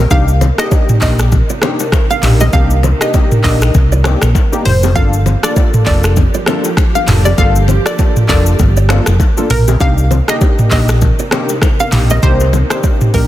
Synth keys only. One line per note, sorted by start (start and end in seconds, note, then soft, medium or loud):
0.10 0.29 A#3 medium
0.10 0.29 D4 medium
0.10 0.29 D#4 medium
0.10 0.29 G4 loud
0.58 0.98 A#3 medium
0.58 0.99 D4 medium
0.58 0.99 D#4 medium
0.58 0.99 G4 medium
1.01 1.30 A#3 medium
1.01 1.30 D4 medium
1.01 1.30 D#4 medium
1.01 1.30 G4 medium
1.62 1.81 A#3 medium
1.62 1.81 D4 medium
1.62 1.81 D#4 medium
1.62 1.81 G4 medium
2.22 2.41 A#3 medium
2.22 2.41 D4 medium
2.22 2.41 D#4 medium
2.22 2.42 G4 medium
2.53 2.71 A#3 loud
2.53 2.72 D4 medium
2.53 2.72 D#4 medium
2.53 2.72 G4 loud
3.01 3.41 A#3 medium
3.01 3.41 D4 medium
3.01 3.41 D#4 medium
3.01 3.41 G4 medium
3.44 3.72 A#3 medium
3.44 3.72 D4 medium
3.44 3.72 D#4 medium
3.44 3.73 G4 medium
4.04 4.23 A#3 medium
4.04 4.23 D4 medium
4.04 4.23 D#4 medium
4.04 4.23 G4 medium
4.52 4.66 A#3 medium
4.52 4.67 D4 medium
4.52 4.67 D#4 medium
4.52 4.67 G4 medium
4.95 5.14 A#3 medium
4.95 5.14 D4 medium
4.95 5.14 F4 medium
4.95 5.14 A4 loud
5.43 5.83 A#3 medium
5.43 5.83 D4 medium
5.43 5.84 F4 medium
5.43 5.84 A4 medium
5.86 6.15 A#3 medium
5.86 6.15 D4 medium
5.86 6.15 F4 medium
5.86 6.15 A4 medium
6.47 6.65 A#3 medium
6.47 6.66 D4 medium
6.47 6.66 F4 medium
6.47 6.66 A4 medium
7.07 7.26 A#3 medium
7.07 7.26 D4 medium
7.07 7.26 F4 medium
7.07 7.26 A4 medium
7.38 7.56 A#3 medium
7.38 7.56 D4 medium
7.38 7.57 F4 medium
7.38 7.57 A4 loud
7.85 8.26 A#3 medium
7.85 8.26 D4 medium
7.85 8.26 F4 medium
7.85 8.26 A4 medium
8.29 8.57 A#3 medium
8.29 8.57 D4 medium
8.29 8.57 F4 medium
8.29 8.57 A4 medium
8.89 9.08 A#3 medium
8.89 9.08 D4 medium
8.89 9.08 F4 medium
8.89 9.08 A4 medium
9.37 9.51 A#3 medium
9.37 9.51 D4 medium
9.37 9.52 F4 medium
9.37 9.52 A4 medium
9.80 9.99 A#3 medium
9.80 9.99 D4 medium
9.80 9.99 D#4 medium
9.80 9.99 G4 loud
10.28 10.68 A#3 medium
10.28 10.68 D4 medium
10.28 10.68 D#4 medium
10.28 10.68 G4 medium
10.71 10.99 A#3 medium
10.71 11.00 D4 medium
10.71 11.00 D#4 medium
10.71 11.00 G4 medium
11.31 11.50 A#3 medium
11.31 11.50 D4 medium
11.31 11.51 D#4 medium
11.31 11.51 G4 medium
11.92 12.11 A#3 medium
11.92 12.11 D4 medium
11.92 12.11 D#4 medium
11.92 12.11 G4 medium
12.22 12.41 A#3 loud
12.22 12.41 D4 medium
12.22 12.41 D#4 medium
12.22 12.41 G4 loud
12.70 13.11 A#3 medium
12.70 13.11 D4 medium
12.70 13.11 D#4 medium
12.70 13.11 G4 medium
13.14 13.27 A#3 medium
13.14 13.27 D4 medium
13.14 13.27 D#4 medium
13.14 13.27 G4 medium